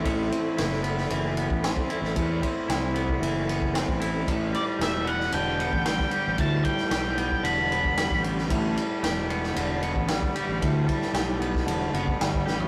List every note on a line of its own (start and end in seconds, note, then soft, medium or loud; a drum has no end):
0.00 1.36 A2 medium
0.00 1.10 E3 medium
0.00 0.83 B3 medium
0.00 0.30 C4 medium
0.00 0.56 E4 medium
0.00 4.23 A4 medium
0.00 12.68 B5 medium
0.05 0.29 A1 loud
0.05 8.47 D5 medium
0.05 kick medium
0.05 ride medium
0.31 1.62 C4 medium
0.31 ride medium
0.57 1.07 F#1 medium
0.57 1.89 E4 medium
0.57 snare loud
0.57 ride medium
0.72 snare soft
0.83 1.37 B3 medium
0.83 ride medium
0.98 snare soft
1.10 1.47 F#1 medium
1.10 2.43 E3 medium
1.10 ride medium
1.37 2.94 B3 medium
1.37 ride medium
1.50 1.74 A1 medium
1.50 kick medium
1.64 2.41 C4 medium
1.64 snare loud
1.64 ride medium
1.77 kick medium
1.90 2.67 E4 medium
1.90 ride medium
2.02 2.14 A1 medium
2.02 snare soft
2.16 2.40 E2 medium
2.16 3.48 A2 medium
2.16 kick medium
2.16 ride medium
2.42 3.73 C4 medium
2.42 kick medium
2.42 ride medium
2.68 3.18 C2 medium
2.68 3.99 E4 medium
2.68 snare loud
2.68 ride medium
2.94 3.47 B3 medium
2.94 ride medium
3.09 kick medium
3.20 3.83 F#1 medium
3.20 4.27 E3 medium
3.20 ride medium
3.47 4.30 B3 medium
3.47 ride medium
3.62 kick medium
3.74 4.27 C4 medium
3.74 snare loud
3.74 ride medium
3.88 4.25 A1 medium
3.88 kick medium
4.00 4.27 E4 medium
4.00 ride medium
4.27 4.52 A1 loud
4.27 5.59 A2 medium
4.27 12.68 G4 medium
4.27 12.68 B4 medium
4.27 kick loud
4.27 ride medium
4.53 5.85 G3 medium
4.53 4.62 D5 medium
4.53 ride medium
4.79 5.29 E1 medium
4.79 6.11 G4 medium
4.79 snare loud
4.79 ride medium
4.83 5.09 E5 medium
5.05 5.59 B3 medium
5.05 5.34 F#5 medium
5.05 ride medium
5.20 snare soft
5.32 5.70 E1 medium
5.32 6.65 D3 medium
5.32 5.83 G5 medium
5.32 ride medium
5.59 7.17 B3 medium
5.59 ride medium
5.73 5.97 A1 medium
5.73 kick medium
5.85 6.64 G3 medium
5.85 6.40 G5 medium
5.85 snare loud
5.85 ride medium
5.99 kick medium
5.99 snare soft
6.11 6.90 G4 medium
6.11 ride medium
6.28 6.38 A1 medium
6.38 6.63 D2 medium
6.38 7.71 A2 medium
6.38 6.64 A5 medium
6.38 kick medium
6.38 ride medium
6.65 7.96 G3 medium
6.65 7.47 G5 loud
6.65 kick medium
6.65 ride medium
6.78 snare soft
6.90 7.40 B1 medium
6.90 8.22 G4 medium
6.90 snare loud
6.90 ride medium
7.18 7.71 B3 medium
7.18 ride medium
7.31 kick medium
7.43 8.07 E1 medium
7.43 8.77 D3 medium
7.43 8.20 B5 medium
7.43 ride medium
7.71 9.29 B3 medium
7.71 ride medium
7.84 kick medium
7.97 8.76 G3 medium
7.97 snare loud
7.97 ride loud
8.11 8.48 A1 medium
8.11 kick medium
8.11 snare soft
8.22 9.02 G4 medium
8.22 ride medium
8.38 snare soft
8.49 8.75 A1 loud
8.49 9.82 A2 medium
8.49 12.68 E5 medium
8.49 kick loud
8.49 ride medium
8.76 10.07 G3 medium
8.76 ride medium
9.03 9.52 E1 medium
9.03 10.34 G4 medium
9.03 snare loud
9.03 ride medium
9.29 9.81 B3 medium
9.29 ride medium
9.43 snare soft
9.55 9.93 E1 medium
9.55 10.88 D3 medium
9.55 ride medium
9.82 11.15 B3 medium
9.82 ride medium
9.95 10.20 A1 medium
9.95 kick medium
10.08 10.86 G3 medium
10.08 snare loud
10.08 ride medium
10.23 kick medium
10.35 11.13 G4 medium
10.35 ride medium
10.49 10.61 A1 loud
10.62 10.87 D2 medium
10.62 11.94 A2 medium
10.62 kick loud
10.62 ride medium
10.88 12.19 G3 medium
10.88 kick medium
10.88 ride medium
11.02 snare soft
11.13 11.63 B1 medium
11.13 12.45 G4 medium
11.13 snare loud
11.13 ride medium
11.40 11.93 B3 medium
11.40 ride medium
11.55 kick medium
11.55 snare soft
11.66 11.92 E1 medium
11.66 12.68 D3 medium
11.66 ride medium
11.94 12.18 F#1 medium
11.94 12.68 B3 medium
11.94 ride medium
12.07 kick medium
12.20 12.44 G1 medium
12.20 12.68 G3 medium
12.20 snare loud
12.20 ride medium
12.34 kick medium
12.46 12.68 A1 medium
12.46 12.68 G4 medium
12.46 snare medium
12.60 floor tom medium